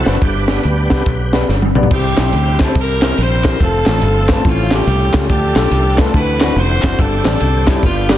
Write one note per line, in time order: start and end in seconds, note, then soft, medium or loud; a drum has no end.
0.00 0.17 F#3 soft
0.00 0.18 C4 medium
0.00 0.18 E4 medium
0.00 0.18 F#4 medium
0.00 0.17 A4 medium
0.05 0.20 F#1 medium
0.05 0.16 C4 medium
0.05 0.16 D4 medium
0.05 0.17 F#4 medium
0.05 0.17 B4 medium
0.05 snare medium
0.05 closed hi-hat medium
0.21 0.58 G1 medium
0.21 0.87 G2 medium
0.21 0.47 D4 medium
0.21 1.45 G4 medium
0.21 1.45 B4 loud
0.21 kick medium
0.21 closed hi-hat medium
0.47 1.03 G3 soft
0.47 1.03 B3 soft
0.47 0.58 B3 medium
0.47 1.03 D4 medium
0.47 0.59 D4 medium
0.47 0.59 G4 medium
0.47 0.59 B4 medium
0.47 snare medium
0.47 closed hi-hat medium
0.63 0.87 D2 medium
0.63 closed hi-hat medium
0.90 1.04 C2 medium
0.90 1.01 B3 medium
0.90 1.01 D4 medium
0.90 1.01 G4 medium
0.90 1.01 B4 medium
0.90 kick medium
0.90 snare loud
0.90 closed hi-hat medium
1.06 1.42 B1 medium
1.06 kick medium
1.06 closed hi-hat medium
1.32 1.43 B3 medium
1.32 1.44 D4 medium
1.32 1.44 G4 medium
1.32 1.44 B4 medium
1.32 snare medium
1.32 closed hi-hat medium
1.49 1.71 G1 medium
1.49 snare soft
1.62 high tom medium
1.75 1.89 B1 medium
1.75 1.86 B3 medium
1.75 1.86 D4 medium
1.75 1.86 G4 medium
1.75 1.86 D5 medium
1.75 mid tom medium
1.83 floor tom medium
1.91 2.14 C2 loud
1.91 2.56 C3 medium
1.91 2.74 G3 medium
1.91 2.74 C4 medium
1.91 2.72 C4 medium
1.91 1.98 D4 soft
1.91 2.73 E4 medium
1.91 2.57 G4 medium
1.91 2.75 C5 medium
1.91 kick loud
1.91 crash medium
1.97 2.77 E4 medium
2.16 2.31 B1 medium
2.16 2.28 C4 medium
2.16 2.28 E4 medium
2.16 2.28 G4 medium
2.16 2.28 C5 medium
2.16 snare loud
2.16 clap medium
2.16 closed hi-hat medium
2.33 2.69 D2 medium
2.33 closed hi-hat medium
2.59 2.65 C4 medium
2.59 2.65 E4 medium
2.59 2.65 G4 medium
2.59 2.66 C5 medium
2.59 kick medium
2.59 snare loud
2.59 clap loud
2.59 closed hi-hat medium
2.63 2.75 C4 medium
2.63 2.77 A4 loud
2.67 2.75 E4 medium
2.67 2.76 G4 medium
2.67 2.76 C5 medium
2.75 3.11 C2 loud
2.75 3.40 C3 medium
2.75 3.58 G3 medium
2.75 3.58 C4 medium
2.75 2.82 D#4 soft
2.75 3.58 A#4 medium
2.75 kick loud
2.75 closed hi-hat medium
2.79 3.18 E4 medium
2.79 3.61 E4 medium
2.79 3.19 G4 medium
2.79 3.21 A#4 loud
3.01 3.12 C4 medium
3.01 3.12 E4 medium
3.01 3.13 G4 medium
3.01 3.13 A#4 medium
3.01 snare loud
3.01 clap medium
3.01 closed hi-hat medium
3.18 3.54 A#1 medium
3.18 3.58 E4 medium
3.18 3.58 G4 medium
3.18 3.61 C5 loud
3.18 closed hi-hat medium
3.43 3.54 C4 medium
3.43 3.55 E4 medium
3.43 3.55 G4 medium
3.43 3.55 A#4 medium
3.43 kick medium
3.43 snare medium
3.43 clap medium
3.43 closed hi-hat medium
3.60 3.83 F1 loud
3.60 4.43 F3 medium
3.60 4.43 A3 medium
3.60 4.44 C4 medium
3.60 4.42 C4 medium
3.60 4.42 F4 medium
3.60 4.43 A4 medium
3.60 4.26 A4 loud
3.60 kick loud
3.60 closed hi-hat medium
3.85 4.00 A1 medium
3.85 3.97 A3 medium
3.85 3.97 C4 medium
3.85 3.97 F4 medium
3.85 3.98 A4 medium
3.85 snare loud
3.85 clap medium
3.85 closed hi-hat medium
4.02 4.38 G1 medium
4.02 closed hi-hat loud
4.28 4.34 A3 medium
4.28 4.34 C4 medium
4.28 4.34 F4 medium
4.28 4.45 A4 loud
4.28 4.35 B4 medium
4.28 kick medium
4.28 snare loud
4.28 clap loud
4.28 closed hi-hat medium
4.36 4.44 A3 medium
4.36 4.45 C4 medium
4.36 4.45 F4 medium
4.36 4.45 A4 medium
4.44 4.81 A1 loud
4.44 5.09 A2 medium
4.44 5.28 F3 medium
4.44 5.27 A3 medium
4.44 4.51 C4 soft
4.44 4.73 C4 medium
4.44 4.73 C#4 medium
4.44 4.73 F4 medium
4.44 5.27 G4 medium
4.44 kick loud
4.44 closed hi-hat medium
4.50 5.30 C#3 medium
4.70 4.81 A3 medium
4.70 5.27 C4 medium
4.70 4.82 C#4 medium
4.70 4.82 F4 medium
4.70 4.82 G4 medium
4.70 snare loud
4.70 clap medium
4.70 closed hi-hat medium
4.75 5.27 C#4 medium
4.75 5.15 G4 medium
4.87 5.10 C2 loud
4.87 closed hi-hat medium
5.13 5.27 C#2 loud
5.13 5.24 A3 medium
5.13 5.24 C#4 medium
5.13 5.24 F4 medium
5.13 5.25 G4 medium
5.13 kick medium
5.13 snare loud
5.13 clap medium
5.13 closed hi-hat medium
5.28 5.52 D2 medium
5.28 5.94 D3 medium
5.28 6.12 F3 medium
5.28 6.12 A3 medium
5.28 6.12 D4 medium
5.28 6.10 D4 medium
5.28 5.35 G4 medium
5.28 5.94 G4 loud
5.28 kick loud
5.28 closed hi-hat medium
5.34 6.15 A4 medium
5.55 5.69 B1 medium
5.55 5.66 A3 medium
5.55 5.66 D4 medium
5.55 5.66 F4 medium
5.55 5.67 A4 medium
5.55 snare loud
5.55 clap medium
5.55 closed hi-hat medium
5.71 6.07 C2 medium
5.71 closed hi-hat loud
5.97 6.03 A3 medium
5.97 6.03 D4 medium
5.97 6.03 F4 medium
5.97 6.14 A4 loud
5.97 6.04 B4 medium
5.97 kick loud
5.97 snare loud
5.97 clap loud
5.97 closed hi-hat medium
6.05 6.13 A3 medium
6.05 6.14 D4 medium
6.05 6.14 F4 medium
6.05 6.14 A4 medium
6.14 6.50 D2 loud
6.14 6.79 D3 medium
6.14 6.97 E3 medium
6.14 6.96 C4 medium
6.14 6.97 D4 medium
6.14 6.57 E4 medium
6.14 6.97 F#4 medium
6.14 6.58 F#4 medium
6.14 6.58 B4 loud
6.14 kick loud
6.14 closed hi-hat medium
6.40 6.51 C4 medium
6.40 6.51 D4 medium
6.40 6.51 E4 medium
6.40 6.52 F#4 medium
6.40 snare loud
6.40 clap medium
6.40 closed hi-hat medium
6.56 6.79 F1 loud
6.56 6.96 E4 medium
6.56 6.97 F#4 medium
6.56 6.99 C5 loud
6.56 closed hi-hat medium
6.82 6.97 F#1 medium
6.82 6.93 C4 medium
6.82 6.93 D4 medium
6.82 6.94 E4 medium
6.82 6.94 F#4 medium
6.82 kick medium
6.82 snare loud
6.82 clap medium
6.82 closed hi-hat medium
6.99 7.21 G1 loud
6.99 7.63 G2 medium
6.99 7.81 D3 medium
6.99 7.81 G3 medium
6.99 7.79 C4 medium
6.99 7.82 C4 medium
6.99 7.79 D4 medium
6.99 7.05 F#4 medium
6.99 7.67 A4 loud
6.99 kick loud
6.99 closed hi-hat medium
7.04 7.83 G4 medium
7.23 7.38 A1 medium
7.23 7.35 G3 medium
7.23 7.35 C4 medium
7.23 7.35 D4 medium
7.23 7.36 G4 medium
7.23 snare loud
7.23 clap medium
7.23 closed hi-hat medium
7.41 7.77 C2 medium
7.41 closed hi-hat loud
7.66 7.72 G3 medium
7.66 7.72 C4 medium
7.66 7.73 D4 medium
7.66 7.73 E4 medium
7.66 7.82 A4 loud
7.66 kick medium
7.66 snare loud
7.66 clap loud
7.66 closed hi-hat medium
7.74 7.82 G3 medium
7.74 7.83 C4 medium
7.74 7.83 D4 medium
7.74 7.83 E4 medium
7.82 8.18 G1 medium
7.82 8.18 G2 medium
7.82 8.18 D3 medium
7.82 8.18 G3 medium
7.82 8.18 B3 medium
7.82 8.10 B3 medium
7.82 8.10 D4 medium
7.82 8.09 F4 medium
7.82 8.18 G4 medium
7.82 kick loud
7.82 closed hi-hat medium
8.08 8.18 G3 medium
8.08 8.18 B3 medium
8.08 8.18 D4 medium
8.08 8.18 G4 medium
8.08 snare loud
8.08 clap medium
8.08 closed hi-hat medium